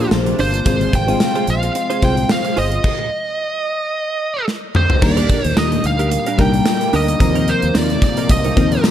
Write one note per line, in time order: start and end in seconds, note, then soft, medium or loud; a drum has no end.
0.00 2.80 C3 medium
0.00 2.80 F3 medium
0.00 0.63 A#3 medium
0.00 0.68 A#3 medium
0.00 0.63 D4 medium
0.00 0.68 D4 medium
0.00 0.66 F4 medium
0.00 0.67 G4 medium
0.00 0.68 G#4 medium
0.00 0.67 C5 loud
0.11 0.32 A#1 medium
0.11 snare loud
0.11 tambourine medium
0.26 muted clean electric guitar stroke soft
0.26 closed hi-hat soft
0.38 0.59 G1 medium
0.38 0.54 D4 medium
0.38 0.54 F4 medium
0.38 0.53 C5 medium
0.38 0.96 C5 medium
0.38 open hi-hat medium
0.38 tambourine soft
0.54 closed hi-hat medium
0.66 0.86 G#1 loud
0.66 0.92 G#3 medium
0.66 2.82 G#3 medium
0.66 0.92 C4 medium
0.66 0.91 F4 medium
0.66 2.82 F4 medium
0.66 0.92 F4 medium
0.66 0.91 G#4 medium
0.66 0.92 C5 medium
0.66 kick loud
0.66 closed hi-hat loud
0.66 tambourine soft
0.81 closed hi-hat medium
0.93 1.14 G#1 loud
0.93 1.50 G5 loud
0.93 kick medium
0.93 closed hi-hat medium
0.93 tambourine soft
1.08 1.67 G#3 medium
1.08 1.67 C4 medium
1.08 1.68 F4 medium
1.08 1.19 F4 soft
1.08 1.18 G#4 medium
1.08 1.18 C5 medium
1.08 1.68 C5 medium
1.08 closed hi-hat medium
1.20 muted clean electric guitar stroke soft
1.20 snare loud
1.20 tambourine medium
1.35 1.47 F4 medium
1.35 1.47 G#4 medium
1.35 1.47 C5 medium
1.35 closed hi-hat soft
1.47 1.68 A#1 loud
1.47 2.05 F5 loud
1.47 muted clean electric guitar stroke soft
1.47 closed hi-hat medium
1.47 tambourine soft
1.63 muted clean electric guitar stroke soft
1.63 closed hi-hat medium
1.75 muted clean electric guitar stroke soft
1.75 closed hi-hat medium
1.75 tambourine soft
1.90 2.01 F4 medium
1.90 2.01 G#4 medium
1.90 2.02 C5 medium
1.90 closed hi-hat soft
2.02 2.23 C2 medium
2.02 2.54 G#3 medium
2.02 2.54 C4 medium
2.02 2.14 F4 medium
2.02 2.54 F4 medium
2.02 2.15 G#4 medium
2.02 2.54 C5 medium
2.02 2.15 C5 medium
2.02 2.29 G5 loud
2.02 kick loud
2.02 closed hi-hat medium
2.02 tambourine soft
2.17 muted clean electric guitar stroke soft
2.17 closed hi-hat medium
2.29 2.59 F5 medium
2.29 muted clean electric guitar stroke soft
2.29 snare loud
2.29 tambourine medium
2.45 muted clean electric guitar stroke soft
2.45 closed hi-hat soft
2.56 2.78 G1 medium
2.56 2.72 F4 medium
2.56 2.71 G#4 loud
2.56 2.70 C5 loud
2.56 4.45 D#5 medium
2.56 open hi-hat medium
2.71 muted clean electric guitar stroke soft
2.71 closed hi-hat medium
2.84 kick loud
2.84 crash medium
4.48 snare medium
4.75 5.04 C5 medium
4.75 mid tom medium
4.90 floor tom medium
5.02 5.23 D#2 loud
5.02 7.19 A#2 medium
5.02 5.72 G3 medium
5.02 7.19 G3 medium
5.02 5.72 A#3 medium
5.02 8.91 A#3 medium
5.02 5.72 D4 medium
5.02 5.72 D#4 medium
5.02 5.72 A#4 medium
5.02 5.48 D5 loud
5.02 muted clean electric guitar stroke soft
5.02 kick loud
5.02 crash loud
5.02 tambourine soft
5.17 5.28 D4 medium
5.17 5.29 G4 medium
5.17 5.29 A#4 medium
5.17 closed hi-hat medium
5.29 5.42 D4 medium
5.29 5.42 G4 medium
5.29 5.42 A#4 medium
5.29 kick loud
5.29 closed hi-hat medium
5.29 tambourine soft
5.44 5.54 D#2 medium
5.44 5.58 C5 loud
5.44 muted clean electric guitar stroke soft
5.44 closed hi-hat medium
5.57 5.77 D#2 medium
5.57 5.72 D4 medium
5.57 5.72 G4 medium
5.57 5.71 A#4 medium
5.57 5.83 D#5 medium
5.57 snare loud
5.57 tambourine medium
5.72 muted clean electric guitar stroke medium
5.72 closed hi-hat soft
5.84 6.16 D2 loud
5.84 6.36 F5 loud
5.84 muted clean electric guitar stroke soft
5.84 closed hi-hat medium
5.84 tambourine medium
5.99 6.10 D4 soft
5.99 6.09 G4 medium
5.99 6.09 A#4 medium
5.99 closed hi-hat medium
6.12 muted clean electric guitar stroke soft
6.12 closed hi-hat medium
6.12 tambourine soft
6.26 6.37 D4 medium
6.26 6.37 G4 medium
6.26 6.36 A#4 medium
6.26 closed hi-hat medium
6.38 6.59 C2 medium
6.38 6.90 G3 medium
6.38 6.90 A#3 medium
6.38 6.54 D4 medium
6.38 6.90 D4 medium
6.38 6.90 D#4 medium
6.38 6.53 G4 medium
6.38 6.90 A#4 medium
6.38 6.52 A#4 loud
6.38 6.96 G5 loud
6.38 kick loud
6.38 closed hi-hat medium
6.38 tambourine soft
6.54 closed hi-hat medium
6.66 snare loud
6.66 tambourine medium
6.81 muted clean electric guitar stroke soft
6.81 closed hi-hat soft
6.93 7.14 D2 medium
6.93 7.09 D4 medium
6.93 7.08 G4 medium
6.93 7.07 A#4 loud
6.93 7.50 D#5 loud
6.93 open hi-hat medium
6.93 tambourine soft
7.08 muted clean electric guitar stroke soft
7.08 closed hi-hat medium
7.20 7.52 D#2 loud
7.20 8.91 C3 medium
7.20 7.90 F3 medium
7.20 8.91 F3 medium
7.20 7.90 A#3 medium
7.20 7.90 C4 medium
7.20 7.90 D#4 medium
7.20 7.90 A#4 medium
7.20 muted clean electric guitar stroke soft
7.20 kick loud
7.20 closed hi-hat medium
7.20 tambourine soft
7.35 7.47 C4 medium
7.35 7.47 D#4 medium
7.35 7.47 A#4 medium
7.35 closed hi-hat medium
7.48 7.60 C4 medium
7.48 7.60 D#4 medium
7.48 7.60 A#4 medium
7.48 7.77 C5 medium
7.48 closed hi-hat medium
7.48 tambourine soft
7.62 7.72 D#2 medium
7.62 muted clean electric guitar stroke soft
7.62 closed hi-hat medium
7.74 7.95 D#2 loud
7.74 7.90 C4 medium
7.74 7.90 D#4 medium
7.74 7.89 A#4 loud
7.74 8.01 D5 medium
7.74 snare loud
7.74 tambourine medium
7.90 muted clean electric guitar stroke medium
7.90 closed hi-hat soft
8.02 8.31 D5 medium
8.02 muted clean electric guitar stroke soft
8.02 kick medium
8.02 closed hi-hat medium
8.02 tambourine medium
8.17 8.28 C4 soft
8.17 8.28 D#4 medium
8.17 8.27 A#4 medium
8.17 closed hi-hat medium
8.29 8.50 C2 loud
8.29 8.81 D#5 medium
8.29 muted clean electric guitar stroke soft
8.29 kick medium
8.29 closed hi-hat medium
8.29 tambourine soft
8.44 8.55 C4 medium
8.44 8.55 D#4 medium
8.44 8.55 A#4 medium
8.44 closed hi-hat soft
8.56 8.77 D#2 medium
8.56 8.91 F3 medium
8.56 8.91 A#3 medium
8.56 8.91 C4 medium
8.56 8.72 C4 medium
8.56 8.91 D#4 medium
8.56 8.71 D#4 loud
8.56 8.91 A#4 medium
8.56 8.70 A#4 medium
8.56 kick loud
8.56 closed hi-hat medium
8.56 tambourine soft
8.72 muted clean electric guitar stroke soft
8.72 closed hi-hat medium
8.84 snare loud
8.84 tambourine medium